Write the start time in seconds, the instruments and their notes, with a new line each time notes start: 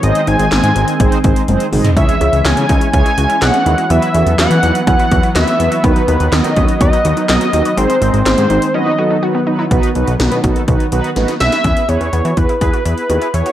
Already playing: analog synth pad D#3
0.03 analog synth bass G#1, analog polysynth G#3 C4 D#4 G#4 C5, analog synth pad G#3 C4, analog synth lead D#5, closed hi-hat
0.15 closed hi-hat
0.27 analog synth bass G#1, analog polysynth G#3 C4 D#4 G#4 C5, analog synth lead G#5, closed hi-hat
0.39 analog synth bass G#1, closed hi-hat
0.51 analog synth bass G#1, analog polysynth G#3 C4 D#4 G#4 C5, snare, clap, closed hi-hat
0.63 analog synth bass G#2, closed hi-hat
0.76 analog synth bass G#1, analog polysynth G#3 C4 D#4 G#4 D#5, closed hi-hat
0.88 closed hi-hat
1.00 analog synth bass G#1, analog polysynth G#3 C4 D#4 G#4 C5, kick, closed hi-hat
1.12 closed hi-hat
1.24 analog synth bass G#1, analog polysynth G#3 C4 D#4 G#4 C5, kick, closed hi-hat
1.36 closed hi-hat
1.48 analog synth bass F#1, analog polysynth G#3 C4 D#4 G#4 C5, closed hi-hat, high tom
1.60 closed hi-hat
1.73 analog synth bass G#1, analog polysynth G#3 C4 D#4 G#4 D#5, mid tom, open hi-hat
1.84 closed hi-hat, floor tom
1.97 analog synth bass C#2, analog synth pad E3 G#3 C#4, analog polysynth G#3 C#4 E4 G#4 C#5, synth arpeggio sound C#4, analog synth lead E5, kick, closed hi-hat
2.09 synth arpeggio sound E4, closed hi-hat
2.21 analog synth bass C#2, analog polysynth G#3 C#4 E4 G#4 C#5, synth arpeggio sound C#4, closed hi-hat
2.33 analog synth bass C#2, closed hi-hat
2.45 analog synth bass C#2, analog polysynth G#3 C#4 E4 G#4 C#5, synth arpeggio sound C#4, analog synth lead G#5, snare, clap, closed hi-hat
2.57 analog synth bass C#3, closed hi-hat
2.69 analog synth bass C#2, analog polysynth G#3 C#4 E4 G#4 C#5, synth arpeggio sound D#4, kick, closed hi-hat
2.81 closed hi-hat
2.93 analog synth bass C#2, analog polysynth G#3 C#4 E4 G#4 C#5, synth arpeggio sound C#4, analog synth lead G#5, kick, closed hi-hat
3.05 synth arpeggio sound E4, closed hi-hat
3.18 analog synth bass C#2, analog polysynth G#3 C#4 E4 G#4 C#5, synth arpeggio sound F#4, closed hi-hat
3.29 synth arpeggio sound E4, closed hi-hat
3.42 analog synth bass B1, analog polysynth G#3 C#4 E4 G#4 C#5, synth arpeggio sound G#4, analog synth lead F#5, snare, clap, closed hi-hat
3.54 synth arpeggio sound C#4, closed hi-hat
3.66 analog synth bass D#2, analog polysynth G#3 C#4 E4 G#4 C#5, synth arpeggio sound E4, closed hi-hat
3.78 synth arpeggio sound F#4, closed hi-hat
3.90 analog synth bass E2, analog synth pad F#3 B3, analog polysynth F#3 B3 E4 F#4 B4, synth arpeggio sound B3, analog synth lead E5, closed hi-hat
4.02 synth arpeggio sound E4, closed hi-hat
4.14 analog synth bass E2, analog polysynth F#3 B3 E4 F#4 A4, synth arpeggio sound C#4, closed hi-hat
4.26 analog synth bass E2, closed hi-hat
4.38 analog synth bass E2, analog polysynth F#3 B3 E4 F#4 B4, synth arpeggio sound C#4, analog synth lead F#5, snare, clap, closed hi-hat
4.51 analog synth bass E3, closed hi-hat
4.63 analog synth bass E2, analog polysynth F#3 B3 E4 F#4 B4, synth arpeggio sound D#4, closed hi-hat
4.75 closed hi-hat
4.87 analog synth bass E2, analog polysynth F#3 B3 E4 F#4 B4, synth arpeggio sound C#4, analog synth lead F#5, kick, closed hi-hat
4.99 synth arpeggio sound E4, closed hi-hat
5.11 analog synth bass E2, analog polysynth F#3 B3 E4 F#4 B4, synth arpeggio sound F#4, kick, closed hi-hat
5.23 synth arpeggio sound E4, closed hi-hat
5.35 analog synth bass D#2, analog polysynth F#3 B3 E4 F#4 B4, synth arpeggio sound F#4, analog synth lead E5, snare, clap, closed hi-hat
5.47 synth arpeggio sound B3, closed hi-hat
5.60 analog synth bass E2, analog polysynth F#3 B3 E4 F#4 B4, synth arpeggio sound E4, closed hi-hat
5.72 synth arpeggio sound F#4, closed hi-hat
5.84 analog synth bass D#2, analog synth pad D#3 F#3, analog polysynth F#3 B3 D#4 F#4 B4, synth arpeggio sound B3, analog synth lead B4, kick, closed hi-hat
5.96 synth arpeggio sound D#4, closed hi-hat
6.08 analog synth bass D#2, analog polysynth F#3 B3 D#4 F#4 B4, synth arpeggio sound B3, closed hi-hat
6.20 analog synth bass D#2, closed hi-hat
6.32 analog synth bass D#2, analog polysynth F#3 B3 D#4 F#4 B4, synth arpeggio sound B3, analog synth lead D#5, snare, clap, closed hi-hat
6.44 analog synth bass D#3, closed hi-hat
6.56 analog synth bass D#2, analog polysynth F#3 B3 D#4 F#4 B4, synth arpeggio sound C#4, kick, closed hi-hat
6.68 closed hi-hat
6.81 analog synth bass D#2, analog polysynth F#3 B3 D#4 F#4 B4, synth arpeggio sound B3, analog synth lead D#5, kick, closed hi-hat
6.93 synth arpeggio sound D#4, closed hi-hat
7.05 analog synth bass D#2, analog polysynth F#3 B3 D#4 F#4 B4, synth arpeggio sound F#4, closed hi-hat
7.17 synth arpeggio sound D#4, closed hi-hat
7.29 analog synth bass B1, analog polysynth F#3 B3 D#4 F#4 C#5, synth arpeggio sound F#4, analog synth lead D#5, snare, clap, closed hi-hat
7.41 synth arpeggio sound B3, closed hi-hat
7.53 analog synth bass D#2, analog polysynth F#3 B3 D#4 F#4 B4, synth arpeggio sound D#4, closed hi-hat
7.65 synth arpeggio sound F#4, closed hi-hat
7.77 analog synth bass G#1, analog synth pad G#3 C4, analog polysynth G#3 C4 D#4 G#4 C5, synth arpeggio sound C4, analog synth lead C5, closed hi-hat
7.89 synth arpeggio sound D#4, closed hi-hat
8.02 analog synth bass G#1, analog polysynth G#3 C4 D#4 G#4 D#5, synth arpeggio sound C4, closed hi-hat
8.14 analog synth bass G#1, closed hi-hat
8.26 analog synth bass G#1, analog polysynth G#3 C4 D#4 G#4 C5, synth arpeggio sound C4, analog synth lead C5, snare, clap, closed hi-hat
8.38 analog synth bass G#2, closed hi-hat
8.50 analog synth bass G#1, analog polysynth G#3 C4 D#4 G#4 C5, synth arpeggio sound D#4, closed hi-hat
8.62 closed hi-hat
8.74 analog synth pad F#3 B3, analog polysynth F#3 B3 D#4 F#4 B4, synth arpeggio sound C#4, analog synth lead D#5
8.86 synth arpeggio sound D#4
8.98 analog polysynth F#3 B3 D#4 F#4 A4, synth arpeggio sound F#4
9.11 synth arpeggio sound D#4
9.23 analog polysynth F#3 B3 D#4 F#4 B4, synth arpeggio sound F#4
9.35 synth arpeggio sound B3
9.47 analog polysynth F#3 B3 D#4 F#4 B4, synth arpeggio sound D#4
9.59 synth arpeggio sound E4
9.71 analog synth bass B1, analog synth pad D#3 F#3 B3, analog polysynth B3 D#4 F#4 B4, kick, closed hi-hat
9.83 closed hi-hat
9.95 analog synth bass B1, analog polysynth B3 D#4 F#4 B4, closed hi-hat
10.07 analog synth bass B1, closed hi-hat
10.20 analog synth bass B1, analog polysynth B3 D#4 F#4 B4, snare, closed hi-hat
10.32 analog synth bass B2, closed hi-hat
10.44 analog synth bass B1, analog polysynth B3 D#4 F#4 A4, kick, closed hi-hat
10.56 closed hi-hat
10.68 analog synth bass B1, analog polysynth B3 D#4 F#4 B4, kick, closed hi-hat
10.80 closed hi-hat
10.92 analog synth bass B1, analog polysynth B3 D#4 F#4 B4, closed hi-hat
11.04 closed hi-hat
11.16 analog synth bass A1, analog polysynth B3 D#4 F#4 B4, snare, closed hi-hat
11.28 snare, closed hi-hat
11.40 analog synth bass B1, analog polysynth B3 D#4 F#4 B4, analog synth lead E5, snare, closed hi-hat
11.52 snare, closed hi-hat
11.64 analog synth bass E2, analog polysynth B3 E4 G#4 B4, synth arpeggio sound C#4, kick, closed hi-hat
11.77 closed hi-hat
11.89 analog synth bass E2, synth arpeggio sound B3, analog polysynth B3 E4 G#4 B4, analog synth lead C#5, closed hi-hat
12.01 analog synth bass E2, synth arpeggio sound C#4, closed hi-hat
12.13 analog synth bass E2, synth arpeggio sound B3, analog polysynth B3 E4 G#4 C#5, closed hi-hat
12.25 analog synth bass E3, synth arpeggio sound F#4, closed hi-hat
12.37 analog synth bass E2, analog polysynth B3 E4 G#4 B4, analog synth lead B4, kick, closed hi-hat
12.49 synth arpeggio sound E4, closed hi-hat
12.61 analog synth bass E2, analog polysynth B3 E4 G#4 B4, synth arpeggio sound G#4, analog synth lead B4, kick, closed hi-hat
12.73 synth arpeggio sound F#4, closed hi-hat
12.85 analog synth bass E2, analog polysynth B3 E4 G#4 B4, synth arpeggio sound E4, analog synth lead B4, closed hi-hat
12.98 closed hi-hat
13.09 analog synth bass D#2, analog polysynth B3 E4 G#4 B4, synth arpeggio sound F#4, closed hi-hat
13.22 synth arpeggio sound E4, closed hi-hat
13.34 analog synth bass E2, analog polysynth B3 E4 G#4 B4, synth arpeggio sound E4, analog synth lead C#5, closed hi-hat
13.46 synth arpeggio sound F#4, closed hi-hat